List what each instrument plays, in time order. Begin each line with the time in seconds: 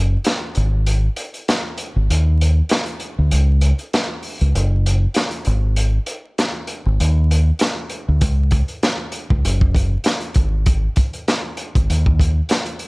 Already playing: fingered electric bass F#1
0.24 snare, closed hi-hat
0.55 fingered electric bass G#1, closed hi-hat
0.86 closed hi-hat
1.16 closed hi-hat
1.34 closed hi-hat
1.48 snare, closed hi-hat
1.78 closed hi-hat
1.96 fingered electric bass G#1
2.10 fingered electric bass D#2, closed hi-hat
2.41 closed hi-hat
2.69 snare, closed hi-hat
2.86 closed hi-hat
3.00 closed hi-hat
3.19 fingered electric bass D2
3.31 fingered electric bass C#2, closed hi-hat
3.61 closed hi-hat
3.79 closed hi-hat
3.93 snare, closed hi-hat
4.23 open hi-hat
4.41 fingered electric bass C#2, closed hi-hat
4.55 fingered electric bass F#1, closed hi-hat
4.86 closed hi-hat
5.14 snare, closed hi-hat
5.31 closed hi-hat
5.45 fingered electric bass G#1, closed hi-hat
5.76 closed hi-hat
6.06 closed hi-hat
6.38 snare, closed hi-hat
6.67 closed hi-hat
6.86 fingered electric bass G#1
7.00 fingered electric bass D#2, closed hi-hat
7.31 closed hi-hat
7.59 snare, closed hi-hat
7.89 closed hi-hat
8.08 fingered electric bass D2
8.21 fingered electric bass C#2, kick, closed hi-hat
8.51 kick, closed hi-hat
8.68 closed hi-hat
8.83 snare, closed hi-hat
9.12 closed hi-hat
9.30 fingered electric bass C#2, kick
9.45 fingered electric bass F#1, closed hi-hat
9.61 kick
9.75 kick, closed hi-hat
10.04 snare, closed hi-hat
10.20 closed hi-hat
10.34 fingered electric bass G#1, kick, closed hi-hat
10.66 kick, closed hi-hat
10.96 kick, closed hi-hat
11.13 closed hi-hat
11.28 snare, closed hi-hat
11.57 closed hi-hat
11.75 fingered electric bass G#1, kick, closed hi-hat
11.90 fingered electric bass D#2, closed hi-hat
12.06 kick
12.20 kick, closed hi-hat
12.49 snare, closed hi-hat
12.65 closed hi-hat
12.79 closed hi-hat